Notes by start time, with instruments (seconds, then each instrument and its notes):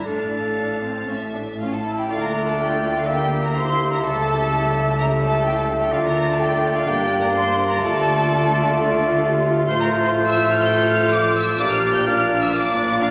0.05 double bass section A1, cello section A2, viola section D4, clarinet A4, violin section F5 A5
0.58 viola section D4
0.83 viola section C4
1.08 double bass section A1, cello section A2, viola section C#4, violin section E5 A5
1.34 viola section D4
1.60 viola section C#4, violin section F4 F5, flute F5
1.72 violin section A4 A5, flute A5
1.85 viola section E4
1.97 violin section G4 G5, flute G5
2.10 double bass section D2, cello section D3, viola section A3 F4, bassoon A3, clarinet D4, violin section F4 F5, french horn section A4, oboe D5, flute F5
2.22 violin section A#4 A#5, flute A#5
2.47 violin section A4 A5, flute A5
2.58 violin section G4 G5, flute G5
2.95 violin section F4 F5, flute F5
3.06 viola section A#3 E4, bassoon A#3, clarinet G4, violin section G4 G5, french horn section A#4, oboe E5, flute G5
3.42 violin section A#4 A#5, flute A#5
3.55 french horn section G4, violin section C5 C6, flute C6
3.90 violin section A#4 A#5, flute A#5
4.03 double bass section C#2, cello section C#3, viola section G3, bassoon A3, violin section A4 A5, french horn section A4, flute A5
4.52 french horn section A4
4.97 violin section A#4 A#5, flute A#5
5.22 violin section A4 A5, flute A5
5.45 french horn section E4, violin section G4 G5, flute G5
5.56 violin section A4 A5, flute A5
5.80 violin section G4 G5, flute G5
5.92 double bass section D2, cello section D3, viola section A3 D4, french horn section F4, clarinet F4, violin section F4 F5, oboe D5, flute F5
6.03 violin section A#4 A#5, flute A#5
6.27 violin section A4 A5, flute A5
6.39 violin section G4 G5, french horn section A4, flute G5
6.75 violin section F4 F5, flute F5
6.86 double bass section G1, cello section G2, bassoon A#3, viola section A#3, clarinet D4, french horn section G4, violin section G4 G5, flute G5
7.21 violin section A#4 A#5, flute A#5
7.32 violin section C5 C6, flute C6
7.68 violin section A#4 A#5, flute A#5
7.79 double bass section D2, cello section D3, bassoon A3, viola section A3 F4, clarinet F4, violin section A4 A5, flute A5
8.27 french horn section F4
8.75 french horn section A4
9.22 french horn section G4
9.68 double bass section A1, cello section A2, viola section F3, bassoon A3, french horn section F4, clarinet F4, oboe C5, violin section C5 C6, flute C6
9.80 violin section A#4 A#5, flute A#5
10.04 violin section C5 C6, flute C6
10.17 french horn section A4
10.26 violin section E5 E6, flute E6
10.51 violin section F5 F6, flute F6
10.63 violin section G5 G6, flute G6
10.87 violin section F5 F6, flute F6
11.11 violin section D5 D6, flute D6
11.35 violin section E5 E6, flute E6
11.58 double bass section A#1, cello section A#2, bassoon A#3, clarinet D4, viola section D4, french horn section G4, oboe D5, violin section D5 D6, flute D6
11.69 violin section F5 F6, flute F6
11.94 violin section G5 G6, flute G6
12.05 bassoon A#3, clarinet D4, french horn section F4, oboe D5, violin section F5 F6, flute F6
12.42 violin section E5 E6, flute E6
12.53 bassoon A#3, clarinet D4, oboe D5, violin section D5 D6, flute D6
12.89 violin section D5 D6, flute D6
13.00 bassoon A#3, clarinet D4, violin section F4 F5, oboe D5, flute F5